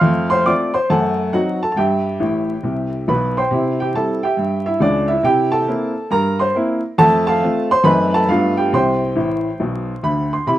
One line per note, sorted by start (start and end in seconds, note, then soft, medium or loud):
0.00 0.39 F2 medium
0.00 0.27 A3 soft
0.00 0.29 F5 medium
0.00 0.28 C6 medium
0.00 0.32 F6 medium
0.30 0.46 C5 medium
0.30 0.46 C6 medium
0.45 0.70 A3 soft
0.45 0.70 C4 soft
0.45 0.70 F4 soft
0.45 0.73 D5 medium
0.45 0.74 D6 medium
0.74 0.89 C5 medium
0.74 0.90 C6 medium
0.90 1.27 F#2 medium
0.90 1.15 A3 soft
0.90 1.31 A4 medium
0.90 1.31 F#5 medium
0.90 1.34 A5 medium
1.33 1.57 F#3 soft
1.33 1.57 C4 soft
1.33 1.57 D#4 soft
1.33 1.60 F#4 medium
1.33 1.61 F#5 medium
1.63 1.73 A4 soft
1.63 1.71 A5 medium
1.72 1.77 A5 soft
1.76 2.14 G2 medium
1.76 3.04 G4 medium
1.76 3.04 E5 soft
1.76 3.07 G5 medium
2.20 2.53 A1 soft
2.20 2.53 A2 soft
2.63 2.96 C2 soft
2.63 2.96 C3 soft
3.08 3.40 B1 soft
3.08 3.41 B2 medium
3.08 3.35 B4 soft
3.08 3.36 B5 medium
3.37 3.77 C5 soft
3.37 3.77 G5 soft
3.37 3.80 C6 medium
3.51 3.88 C3 medium
3.51 3.76 E4 soft
3.80 3.95 G4 medium
3.80 3.95 G5 medium
3.94 4.18 G3 soft
3.94 4.18 C4 soft
3.94 4.19 E4 soft
3.94 4.21 A4 medium
3.94 4.23 A5 medium
4.23 4.64 G4 soft
4.23 4.64 E5 soft
4.23 4.66 G5 medium
4.37 4.74 G2 soft
4.66 4.81 E4 soft
4.66 4.81 E5 medium
4.80 5.15 C#2 medium
4.80 5.15 C#3 medium
4.80 5.08 D4 medium
4.80 5.09 D5 medium
5.08 5.24 E4 soft
5.08 5.24 E5 medium
5.23 5.61 C3 medium
5.23 5.50 E4 soft
5.23 5.51 G4 medium
5.23 5.52 G5 medium
5.52 6.08 A4 medium
5.52 6.11 A5 medium
5.68 5.92 A#3 soft
5.68 5.92 C4 soft
5.68 5.92 E4 soft
6.11 6.48 G2 medium
6.11 6.38 A#4 medium
6.11 6.39 A#5 medium
6.39 6.55 C5 medium
6.39 6.55 C6 medium
6.55 6.79 A#3 soft
6.55 6.79 C4 soft
6.55 6.80 E4 medium
6.98 7.35 F2 medium
6.98 7.23 A3 medium
6.98 7.25 A4 medium
6.98 7.25 A5 loud
7.27 7.68 A4 medium
7.27 7.68 F5 medium
7.27 7.70 A5 medium
7.43 7.67 A3 soft
7.43 7.67 C4 soft
7.43 7.67 F4 soft
7.71 7.85 C5 medium
7.71 7.86 C6 loud
7.83 8.21 F#2 medium
7.83 8.09 A3 soft
7.83 8.08 C4 soft
7.83 8.08 D#4 soft
7.83 8.11 B4 medium
7.83 8.13 B5 medium
8.14 8.29 A4 medium
8.14 8.29 A5 medium
8.29 8.66 G2 medium
8.29 8.53 A3 soft
8.29 8.54 B3 soft
8.29 8.53 D4 soft
8.29 8.55 F4 medium
8.29 8.56 F5 medium
8.57 8.72 G4 soft
8.57 8.72 G5 medium
8.73 9.07 C2 medium
8.73 9.07 C3 medium
8.73 10.27 C5 medium
8.73 10.28 G5 medium
8.73 10.31 C6 medium
9.16 9.48 A1 medium
9.16 9.48 A2 medium
9.60 9.92 B1 soft
9.60 9.92 B2 soft
10.03 10.35 D2 soft
10.03 10.35 D3 medium
10.03 10.31 B5 medium
10.33 10.47 C6 medium
10.47 10.59 C3 medium
10.47 10.59 E4 medium
10.47 10.59 B5 medium